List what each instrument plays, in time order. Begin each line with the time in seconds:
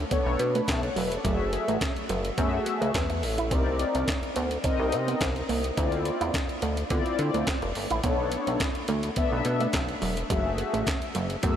0.11 analog polysynth B3 D4 A4 C#5, clean electric guitar B3, kick, closed hi-hat
0.26 analog synth bass B1
0.39 analog synth bass B2, muted clean electric guitar stroke, closed hi-hat
0.55 clean electric guitar A3, analog polysynth F#5 B5, closed hi-hat
0.68 analog synth bass B1, analog polysynth E5 A5, kick, snare, clap, closed hi-hat
0.83 analog polysynth C#5 F#5, closed hi-hat
0.96 analog synth bass E1, clean electric guitar F#3, analog polysynth B4 E5, open hi-hat
1.11 analog polysynth A4 D5, closed hi-hat
1.24 analog synth bass F#1, clean electric guitar F#3, analog polysynth A3 F#4 G#4 E5, kick, closed hi-hat
1.53 muted clean electric guitar stroke, closed hi-hat
1.68 analog synth bass A1, clean electric guitar A3, closed hi-hat
1.81 kick, snare, clap, closed hi-hat
1.96 closed hi-hat
2.09 analog synth bass F#1, clean electric guitar F#3, closed hi-hat
2.25 closed hi-hat
2.37 analog synth bass F#2, analog polysynth A3 F#4 G#4 E5, clean electric guitar B3, kick, closed hi-hat
2.66 muted clean electric guitar stroke, closed hi-hat
2.81 analog synth bass C#2, clean electric guitar A3, closed hi-hat
2.94 analog synth bass E2, clean electric guitar C#4, kick, snare, clap, closed hi-hat
3.10 muted clean electric guitar stroke, closed hi-hat
3.23 analog synth bass A1, open hi-hat
3.38 clean electric guitar E4, closed hi-hat
3.51 analog synth bass C2, analog polysynth C4 D#4 A#4 D5, clean electric guitar C4, kick, closed hi-hat
3.79 muted clean electric guitar stroke, closed hi-hat
3.95 analog synth bass C2, clean electric guitar C4, closed hi-hat
4.08 kick, snare, clap, closed hi-hat
4.23 closed hi-hat
4.36 analog synth bass D2, clean electric guitar B3, closed hi-hat
4.51 closed hi-hat
4.64 clean electric guitar C4, analog polysynth C4 D#4 A#4 D#5, kick, closed hi-hat
4.80 analog synth bass C2
4.92 analog synth bass C3, muted clean electric guitar stroke, closed hi-hat
5.07 clean electric guitar B3, closed hi-hat
5.21 analog synth bass C2, kick, snare, clap, closed hi-hat
5.36 closed hi-hat
5.49 analog synth bass C2, clean electric guitar A#3, open hi-hat
5.64 closed hi-hat
5.77 analog synth bass D2, analog polysynth C4 E4 F4 D5, clean electric guitar D4, kick, closed hi-hat
5.92 closed hi-hat
6.05 muted clean electric guitar stroke, closed hi-hat
6.21 analog synth bass E2, clean electric guitar E4, closed hi-hat
6.34 kick, snare, clap, closed hi-hat
6.49 closed hi-hat
6.62 analog synth bass D2, clean electric guitar A3, closed hi-hat
6.77 closed hi-hat
6.90 analog synth bass D3, clean electric guitar B3, analog polysynth C4 E4 F4 D5, kick, closed hi-hat
7.06 closed hi-hat
7.19 analog synth bass D3, muted clean electric guitar stroke, closed hi-hat
7.34 analog synth bass D2, clean electric guitar A3, closed hi-hat
7.47 clean electric guitar C4, kick, snare, clap, closed hi-hat
7.62 analog synth bass F1, muted clean electric guitar stroke, closed hi-hat
7.75 analog synth bass G1, open hi-hat
7.90 analog synth bass A1, clean electric guitar E4, closed hi-hat
8.04 analog synth bass B1, analog polysynth B3 D4 A4 C#5, clean electric guitar B3, kick, closed hi-hat
8.32 muted clean electric guitar stroke, closed hi-hat
8.47 analog synth bass B1, clean electric guitar B3, closed hi-hat
8.60 kick, snare, clap, closed hi-hat
8.75 closed hi-hat
8.88 analog synth bass D2, clean electric guitar A3, closed hi-hat
9.03 closed hi-hat
9.16 analog polysynth B3 D4 A4 E5, clean electric guitar B3, kick, closed hi-hat
9.32 analog synth bass B1
9.45 analog synth bass B2, muted clean electric guitar stroke, closed hi-hat
9.60 clean electric guitar A3, closed hi-hat
9.73 analog synth bass B1, kick, snare, clap, closed hi-hat
9.89 closed hi-hat
10.02 analog synth bass E1, clean electric guitar F#3, open hi-hat
10.17 closed hi-hat
10.30 analog synth bass F#1, clean electric guitar F#3, analog polysynth G#3 F#4 G#4 E5, kick, closed hi-hat
10.36 analog polysynth A3
10.58 muted clean electric guitar stroke, closed hi-hat
10.73 analog synth bass A1, clean electric guitar A3, closed hi-hat
10.87 kick, snare, clap, closed hi-hat
11.02 closed hi-hat
11.15 analog synth bass F#1, clean electric guitar F#3, closed hi-hat
11.30 closed hi-hat
11.43 analog synth bass F#2, analog polysynth A3 F#4 G#4 E5, clean electric guitar B3, kick, closed hi-hat